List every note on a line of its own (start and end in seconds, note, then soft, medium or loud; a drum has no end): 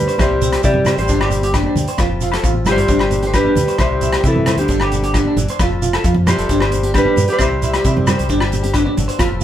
0.00 0.19 G2 medium
0.00 0.17 G3 medium
0.00 0.18 G3 medium
0.00 0.18 C4 medium
0.00 0.18 G4 medium
0.00 0.21 B4 medium
0.08 0.16 C5 medium
0.08 closed hi-hat soft
0.08 shekere soft
0.18 0.57 C2 medium
0.18 1.09 C3 medium
0.18 0.62 G3 medium
0.18 0.65 C4 medium
0.18 0.28 E4 medium
0.18 0.62 G4 medium
0.18 0.62 C5 medium
0.18 kick medium
0.18 cross-stick medium
0.18 closed hi-hat soft
0.18 high conga medium
0.18 low agogo medium
0.18 shekere medium
0.42 0.50 C4 medium
0.42 1.07 E4 medium
0.42 closed hi-hat soft
0.42 shekere loud
0.52 0.61 G4 medium
0.52 cross-stick medium
0.52 closed hi-hat soft
0.52 low agogo medium
0.63 0.92 C3 loud
0.63 0.97 G3 medium
0.63 1.10 C4 medium
0.63 0.72 E4 medium
0.63 0.96 G4 medium
0.63 0.96 D5 loud
0.63 kick medium
0.63 closed hi-hat soft
0.63 shekere medium
0.74 high conga medium
0.74 low conga medium
0.85 1.07 G3 medium
0.85 0.95 C5 medium
0.85 cross-stick medium
0.85 closed hi-hat medium
0.85 low conga medium
0.85 low agogo medium
0.85 shekere medium
0.97 1.07 A1 medium
0.97 1.84 G3 medium
0.97 1.85 G4 medium
0.97 1.07 C5 medium
0.97 1.85 C5 medium
0.97 closed hi-hat soft
0.97 shekere soft
1.08 1.65 G1 loud
1.08 1.99 G2 medium
1.08 1.76 G3 soft
1.08 1.54 C4 medium
1.08 1.18 D4 medium
1.08 1.30 D4 medium
1.08 2.00 G4 medium
1.08 kick medium
1.08 closed hi-hat soft
1.08 shekere medium
1.21 1.29 G4 medium
1.21 cross-stick medium
1.21 low agogo medium
1.30 muted steel-string acoustic guitar stroke soft
1.30 closed hi-hat medium
1.30 high conga medium
1.30 shekere medium
1.42 1.52 G4 medium
1.42 closed hi-hat medium
1.42 high conga medium
1.42 shekere soft
1.54 2.00 C4 medium
1.54 1.63 D4 medium
1.54 kick medium
1.54 cross-stick medium
1.54 closed hi-hat soft
1.54 low agogo medium
1.54 shekere medium
1.63 1.74 D4 medium
1.63 high conga medium
1.75 1.85 D2 medium
1.75 1.97 G3 soft
1.75 closed hi-hat soft
1.75 low conga medium
1.75 shekere medium
1.87 1.96 C5 medium
1.87 closed hi-hat soft
1.87 shekere soft
1.98 2.36 F1 medium
1.98 2.90 F3 medium
1.98 2.66 C4 soft
1.98 2.08 F4 medium
1.98 2.45 F4 medium
1.98 kick medium
1.98 cross-stick medium
1.98 closed hi-hat soft
1.98 high conga medium
1.98 low agogo medium
1.98 shekere medium
2.02 muted steel-string acoustic guitar stroke medium
2.21 2.31 F4 medium
2.21 2.87 A4 medium
2.21 closed hi-hat soft
2.21 shekere medium
2.32 2.41 A4 medium
2.32 cross-stick medium
2.32 closed hi-hat soft
2.32 low agogo medium
2.32 shekere soft
2.43 2.64 A1 medium
2.43 2.53 F4 medium
2.43 2.88 F4 soft
2.43 kick medium
2.43 closed hi-hat soft
2.43 high conga medium
2.43 shekere medium
2.54 high conga medium
2.65 2.86 G1 medium
2.65 2.89 C4 medium
2.65 3.24 G4 medium
2.65 2.75 C5 medium
2.65 cross-stick medium
2.65 closed hi-hat soft
2.65 low conga medium
2.65 low agogo medium
2.65 shekere medium
2.71 3.26 G3 medium
2.71 3.26 C5 loud
2.76 2.86 C5 medium
2.76 closed hi-hat soft
2.76 low conga medium
2.76 shekere soft
2.88 3.44 G1 loud
2.88 3.79 G2 medium
2.88 3.35 C4 medium
2.88 2.98 D4 medium
2.88 kick medium
2.88 closed hi-hat soft
2.88 shekere medium
2.99 cross-stick medium
2.99 low agogo medium
3.11 3.80 D4 medium
3.11 closed hi-hat soft
3.11 high conga medium
3.11 shekere medium
3.22 3.31 G4 medium
3.22 closed hi-hat soft
3.22 high conga medium
3.27 3.34 A3 medium
3.27 3.34 C5 medium
3.34 3.80 C4 medium
3.34 3.42 D4 medium
3.34 3.77 G4 medium
3.34 3.81 B4 medium
3.34 kick medium
3.34 cross-stick medium
3.34 closed hi-hat soft
3.34 low agogo medium
3.34 shekere medium
3.39 3.79 G3 medium
3.45 3.54 D4 medium
3.45 high conga medium
3.55 3.66 D2 medium
3.55 3.78 G3 medium
3.55 closed hi-hat medium
3.55 low conga medium
3.55 shekere medium
3.68 3.76 C5 medium
3.68 closed hi-hat soft
3.68 shekere soft
3.78 4.16 C2 medium
3.78 4.70 C3 medium
3.78 4.69 C4 soft
3.78 3.88 E4 medium
3.78 4.22 G4 medium
3.78 4.22 C5 medium
3.78 kick medium
3.78 cross-stick medium
3.78 closed hi-hat soft
3.78 high conga medium
3.78 low agogo medium
3.78 shekere medium
3.83 4.23 G3 medium
4.01 4.10 E4 medium
4.01 4.68 E4 medium
4.01 closed hi-hat soft
4.01 shekere medium
4.13 4.22 G4 medium
4.13 cross-stick medium
4.13 closed hi-hat soft
4.13 low agogo medium
4.23 4.48 B2 medium
4.23 4.52 C3 medium
4.23 4.33 E4 medium
4.23 4.57 E4 medium
4.23 kick medium
4.23 closed hi-hat soft
4.23 shekere medium
4.28 4.58 E3 medium
4.28 4.58 A4 medium
4.36 high conga medium
4.36 low conga medium
4.46 4.69 A2 medium
4.46 4.55 C5 medium
4.46 cross-stick medium
4.46 closed hi-hat medium
4.46 low conga medium
4.46 low agogo medium
4.46 shekere medium
4.56 4.66 D2 medium
4.56 5.45 G4 medium
4.56 4.67 C5 medium
4.56 closed hi-hat soft
4.56 shekere soft
4.61 5.46 D3 medium
4.61 5.46 D4 medium
4.68 5.25 G1 loud
4.68 5.60 C4 medium
4.68 4.78 D4 medium
4.68 muted steel-string acoustic guitar stroke medium
4.68 kick medium
4.68 closed hi-hat soft
4.68 shekere medium
4.80 4.90 G4 medium
4.80 cross-stick medium
4.80 low agogo medium
4.92 5.60 D4 medium
4.92 closed hi-hat medium
4.92 high conga medium
4.92 shekere medium
5.03 5.12 G4 medium
5.03 closed hi-hat soft
5.03 high conga medium
5.14 5.37 D3 medium
5.14 5.23 D4 medium
5.14 kick medium
5.14 cross-stick medium
5.14 closed hi-hat soft
5.14 low agogo medium
5.14 shekere medium
5.25 5.35 D4 medium
5.25 high conga medium
5.36 5.46 G1 medium
5.36 5.60 E3 medium
5.36 closed hi-hat soft
5.36 low conga medium
5.36 shekere medium
5.48 5.57 C5 medium
5.48 closed hi-hat soft
5.48 shekere soft
5.59 5.97 F1 medium
5.59 6.50 F3 medium
5.59 5.69 F4 medium
5.59 6.05 F4 medium
5.59 5.84 A4 medium
5.59 muted steel-string acoustic guitar stroke medium
5.59 kick medium
5.59 cross-stick medium
5.59 closed hi-hat soft
5.59 high conga medium
5.59 low agogo medium
5.59 shekere medium
5.82 5.90 F4 medium
5.82 closed hi-hat soft
5.82 shekere medium
5.93 6.02 A4 medium
5.93 cross-stick medium
5.93 closed hi-hat soft
5.93 low agogo medium
6.04 6.33 F2 loud
6.04 6.13 F4 medium
6.04 6.48 F4 soft
6.04 kick medium
6.04 closed hi-hat medium
6.04 shekere medium
6.15 high conga medium
6.15 low conga medium
6.27 6.92 G3 medium
6.27 6.51 C4 medium
6.27 6.91 G4 medium
6.27 6.35 C5 medium
6.27 6.92 C5 loud
6.27 cross-stick medium
6.27 closed hi-hat medium
6.27 low conga medium
6.27 low agogo medium
6.27 shekere medium
6.38 6.48 F1 medium
6.38 6.47 A4 medium
6.38 closed hi-hat soft
6.38 shekere soft
6.49 7.05 G1 loud
6.49 7.40 G2 medium
6.49 6.96 C4 medium
6.49 6.58 D4 medium
6.49 kick medium
6.49 closed hi-hat soft
6.49 shekere medium
6.60 6.69 C5 medium
6.60 cross-stick medium
6.60 low agogo medium
6.71 7.41 D4 medium
6.71 closed hi-hat soft
6.71 high conga medium
6.71 shekere medium
6.83 6.92 G4 medium
6.83 closed hi-hat soft
6.83 high conga medium
6.94 7.27 G3 medium
6.94 7.39 C4 medium
6.94 7.03 D4 medium
6.94 7.26 G4 medium
6.94 7.31 B4 medium
6.94 kick medium
6.94 cross-stick medium
6.94 closed hi-hat soft
6.94 low agogo medium
6.94 shekere medium
7.05 7.14 D4 medium
7.05 high conga medium
7.16 7.27 G2 loud
7.16 7.37 G3 medium
7.16 closed hi-hat soft
7.16 low conga medium
7.16 shekere medium
7.28 9.44 G4 medium
7.28 7.38 D5 medium
7.28 closed hi-hat soft
7.28 shekere soft
7.32 8.77 G3 medium
7.32 8.78 C5 medium
7.39 7.77 C2 medium
7.39 8.29 C3 medium
7.39 7.85 C4 medium
7.39 7.48 E4 medium
7.39 kick medium
7.39 cross-stick medium
7.39 closed hi-hat soft
7.39 high conga medium
7.39 low agogo medium
7.39 shekere medium
7.62 8.27 E4 medium
7.62 7.71 E4 medium
7.62 closed hi-hat soft
7.62 shekere medium
7.73 7.82 G4 medium
7.73 cross-stick medium
7.73 closed hi-hat soft
7.73 low agogo medium
7.84 8.13 C3 loud
7.84 8.30 C4 medium
7.84 7.93 E4 medium
7.84 kick medium
7.84 closed hi-hat soft
7.84 shekere medium
7.97 high conga medium
7.97 low conga medium
8.07 8.27 G3 medium
8.07 8.16 C5 medium
8.07 cross-stick medium
8.07 closed hi-hat medium
8.07 low conga medium
8.07 low agogo medium
8.07 shekere medium
8.18 8.28 C2 medium
8.18 8.26 C5 medium
8.18 closed hi-hat soft
8.18 shekere soft
8.29 8.86 G1 medium
8.29 9.20 G2 medium
8.29 9.18 C4 medium
8.29 8.38 D4 medium
8.29 kick medium
8.29 closed hi-hat soft
8.29 shekere medium
8.40 8.49 G4 medium
8.40 cross-stick medium
8.40 low agogo medium
8.52 9.21 D4 medium
8.52 closed hi-hat medium
8.52 high conga medium
8.52 shekere medium
8.63 8.71 G4 medium
8.63 closed hi-hat soft
8.63 high conga medium
8.63 shekere soft
8.73 8.97 D3 medium
8.73 9.44 F#3 medium
8.73 8.82 D4 medium
8.73 kick medium
8.73 cross-stick medium
8.73 closed hi-hat soft
8.73 low agogo medium
8.73 shekere medium
8.78 9.44 B4 medium
8.85 8.94 D4 medium
8.85 high conga medium
8.97 9.07 G1 medium
8.97 9.20 E3 medium
8.97 closed hi-hat soft
8.97 low conga medium
8.97 shekere medium
9.08 9.16 C5 medium
9.08 closed hi-hat medium
9.08 shekere soft
9.19 9.44 F1 medium
9.19 9.44 F3 medium
9.19 9.44 C4 medium
9.19 9.27 F4 medium
9.19 9.44 F4 soft
9.19 9.42 A4 medium
9.19 kick medium
9.19 cross-stick medium
9.19 closed hi-hat medium
9.19 high conga medium
9.19 low agogo medium
9.19 shekere medium